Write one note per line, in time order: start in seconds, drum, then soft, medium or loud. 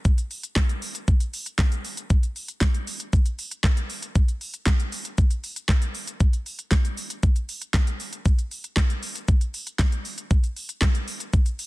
0.05 kick loud
0.05 shaker medium
0.18 closed hi-hat soft
0.18 shaker soft
0.31 open hi-hat medium
0.31 shaker soft
0.43 closed hi-hat medium
0.43 shaker medium
0.56 kick loud
0.56 snare loud
0.56 clap loud
0.56 shaker medium
0.69 closed hi-hat medium
0.69 shaker medium
0.82 open hi-hat medium
0.82 shaker medium
0.95 closed hi-hat medium
0.95 shaker medium
1.08 kick loud
1.08 shaker medium
1.20 closed hi-hat medium
1.20 shaker medium
1.34 open hi-hat medium
1.34 shaker medium
1.46 closed hi-hat medium
1.46 shaker medium
1.58 kick loud
1.58 snare medium
1.58 clap loud
1.58 shaker medium
1.72 closed hi-hat medium
1.72 shaker medium
1.85 open hi-hat medium
1.85 shaker medium
1.97 closed hi-hat medium
1.97 shaker medium
2.10 kick loud
2.10 shaker medium
2.23 closed hi-hat medium
2.23 shaker soft
2.36 open hi-hat medium
2.36 shaker soft
2.48 closed hi-hat medium
2.48 shaker medium
2.61 kick loud
2.61 snare loud
2.61 clap loud
2.61 shaker medium
2.74 closed hi-hat medium
2.74 shaker medium
2.87 open hi-hat medium
2.87 shaker medium
3.00 closed hi-hat medium
3.00 shaker medium
3.13 kick loud
3.13 shaker medium
3.26 closed hi-hat medium
3.26 shaker medium
3.39 open hi-hat medium
3.39 shaker medium
3.51 closed hi-hat medium
3.51 shaker medium
3.64 kick loud
3.64 snare medium
3.64 clap loud
3.64 shaker medium
3.77 closed hi-hat medium
3.77 shaker medium
3.90 open hi-hat medium
3.90 shaker medium
4.02 closed hi-hat medium
4.02 shaker medium
4.15 kick loud
4.15 shaker medium
4.28 closed hi-hat soft
4.28 shaker soft
4.41 open hi-hat medium
4.41 shaker soft
4.54 closed hi-hat medium
4.54 shaker medium
4.66 kick loud
4.66 snare loud
4.66 clap loud
4.66 shaker medium
4.80 closed hi-hat medium
4.80 shaker medium
4.92 open hi-hat medium
4.92 shaker medium
5.05 closed hi-hat medium
5.05 shaker medium
5.18 kick loud
5.18 shaker medium
5.31 closed hi-hat medium
5.31 shaker medium
5.44 open hi-hat medium
5.44 shaker medium
5.56 closed hi-hat medium
5.56 shaker medium
5.69 kick loud
5.69 snare medium
5.69 clap loud
5.69 shaker medium
5.82 closed hi-hat medium
5.82 shaker medium
5.95 open hi-hat medium
5.95 shaker medium
6.07 closed hi-hat medium
6.07 shaker medium
6.20 kick loud
6.20 shaker medium
6.33 closed hi-hat medium
6.33 shaker soft
6.46 open hi-hat medium
6.46 shaker soft
6.59 closed hi-hat medium
6.59 shaker medium
6.71 kick loud
6.71 snare loud
6.71 clap loud
6.71 shaker medium
6.85 closed hi-hat medium
6.85 shaker medium
6.97 open hi-hat medium
6.97 shaker medium
7.10 closed hi-hat medium
7.10 shaker medium
7.23 kick loud
7.23 shaker medium
7.36 closed hi-hat medium
7.36 shaker medium
7.49 open hi-hat medium
7.49 shaker medium
7.62 closed hi-hat medium
7.62 shaker medium
7.74 kick loud
7.74 snare medium
7.74 clap loud
7.74 shaker medium
7.87 closed hi-hat medium
7.87 shaker medium
8.00 open hi-hat medium
8.00 shaker medium
8.13 closed hi-hat medium
8.13 shaker medium
8.25 kick loud
8.25 shaker medium
8.39 closed hi-hat soft
8.39 shaker soft
8.51 open hi-hat medium
8.51 shaker soft
8.64 closed hi-hat medium
8.64 shaker medium
8.76 kick loud
8.76 snare medium
8.76 clap loud
8.76 shaker medium
8.90 closed hi-hat medium
8.90 shaker medium
9.03 open hi-hat medium
9.03 shaker medium
9.15 closed hi-hat medium
9.15 shaker medium
9.28 kick loud
9.28 shaker medium
9.41 closed hi-hat medium
9.41 shaker medium
9.54 open hi-hat medium
9.54 shaker medium
9.67 closed hi-hat medium
9.67 shaker medium
9.79 kick loud
9.79 snare medium
9.79 clap loud
9.79 shaker medium
9.92 closed hi-hat medium
9.92 shaker medium
10.05 open hi-hat medium
10.05 shaker medium
10.18 closed hi-hat medium
10.18 shaker medium
10.31 kick loud
10.31 shaker medium
10.44 closed hi-hat soft
10.44 shaker soft
10.56 open hi-hat medium
10.56 shaker soft
10.69 closed hi-hat medium
10.69 shaker medium
10.81 kick loud
10.81 snare medium
10.81 clap loud
10.81 shaker medium
10.95 closed hi-hat medium
10.95 shaker medium
11.08 open hi-hat medium
11.08 shaker medium
11.20 closed hi-hat medium
11.20 shaker medium
11.33 kick loud
11.33 shaker medium
11.46 closed hi-hat medium
11.46 shaker medium
11.59 open hi-hat medium
11.59 shaker medium